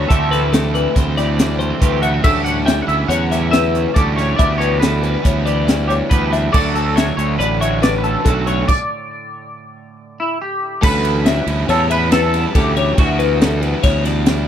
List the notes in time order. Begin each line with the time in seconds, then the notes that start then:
Already playing: A3 B4
0.08 D2 A2 E3 A3 C4 E4 G4 A4 E5, kick, closed hi-hat
0.30 A3 C4 E4 B4, snare, closed hi-hat
0.52 E3 A3 C4 E4 A4, snare, closed hi-hat
0.73 E3 A3 C4 E4 B4, closed hi-hat
0.95 D2 A2 E3 A3 C4 E4 C5, kick, snare, closed hi-hat
1.16 A3 C4 E4 G4 D5, snare, closed hi-hat
1.38 D2 E3 A3 C4 E4, snare, closed hi-hat
1.59 A3 C5, closed hi-hat
1.70 C4
1.80 D2 A2 E3 A3 C4 E4 G4 B4, kick, closed hi-hat
2.01 A3 C4 E4 E5 F#5, closed hi-hat
2.14 C4
2.22 D2 A2 E3 G3 A3 C#4 E4 G4 A4 E5, kick, crash
2.43 G3 C#4 E4 F#5, closed hi-hat
2.65 E3 G3 C#4 E4 E5 G5, snare, closed hi-hat
2.82 E4 F#5
2.87 D2 E3 G3 C#4 E5, closed hi-hat
3.08 E2 A2 E3 G3 C#4 E4 C#5 F#5, closed hi-hat
3.29 G3 C#4 E4 G4 E5, snare, closed hi-hat
3.51 D2 E3 G3 C#4 E4 B4 E5, snare, closed hi-hat
3.75 C#4, closed hi-hat
3.94 D2 A2 E3 G3 A3 C#4 E4 A4 D5, kick, closed hi-hat
3.98 G4
4.16 G3 C#4 E4 C#5, snare, closed hi-hat
4.36 D2 E3 G3 B3 D4 E4 G4 D5 E5, kick, closed hi-hat
4.58 B3 D4 E4 B4 C#5, closed hi-hat
4.62 G3
4.80 E3 G3 B3 E4 A4 B4, snare, closed hi-hat
5.02 E3 G3 B3 E4 B4, closed hi-hat
5.23 D2 E3 G3 B3 E4 C#5, kick, closed hi-hat
5.44 G3 B3 E4 G4 D5, closed hi-hat
5.66 D2 E3 G3 B3 E4, snare, closed hi-hat
5.88 D4 G4 C#5, closed hi-hat
6.09 D2 E3 G3 B3 D4 E4 B4, kick, closed hi-hat
6.13 G4
6.31 G3 B3 D4 E4 E5, snare, closed hi-hat
6.52 D2 D3 F#3 A3 C#4 D4 F#4 A4 D5, kick, crash
6.74 F#3 A3 D4 A4, closed hi-hat
6.96 D3 F#3 A3 D4 C#5 E5, snare, closed hi-hat
7.17 D2 D3 F#3 A3 D4 C#5, closed hi-hat
7.38 A1 D3 F#3 A3 D4 B4 D5, closed hi-hat
7.60 F#3 A3 D4 F#4 C#5 E5, closed hi-hat
7.81 A2 D3 F#3 A3 D4 B4 D5, snare, closed hi-hat
7.98 B4
8.04 C#4 A4, closed hi-hat
8.24 B1 D2 D3 F#3 A3 C#4 D4 F#4 A4, kick, closed hi-hat
8.46 F#3 A3 C#4 D4 C#5, closed hi-hat
8.68 D5, kick, crash
10.20 E4
10.42 G4
10.82 D2 A2 E3 G3 C#4 E4 A4 B4, kick, crash
11.03 G3 C#4 E4, ride
11.25 E3 G3 C#4 E4 E5, snare, ride
11.46 D2 G3 C#4 E4, ride
11.68 E2 A2 E3 G3 C#4 E4 A4 C#5, snare, ride
11.89 G3 C#4 E4 B4 E5, ride
12.10 E3 G3 C#4 E4 A4 B4, snare, ride
12.34 snare, ride
12.54 D2 A2 E3 G3 C#4 E4 G4 A4, kick, snare, ride
12.75 G3 C#4 E4 C#5, ride
12.97 D2 E3 G3 B3 E4 F#4 E5, kick, ride
13.19 G3 B3 E4 B4, ride
13.41 E3 G3 B3 E4 A4, snare, ride
13.61 G3 B3 E4 B4, ride
13.83 D2 E3 G3 B3 E4 C#5, kick, snare, ride
14.04 G3 B3 E4 D5, snare, ride
14.25 E3 G3 B3 E4, snare, ride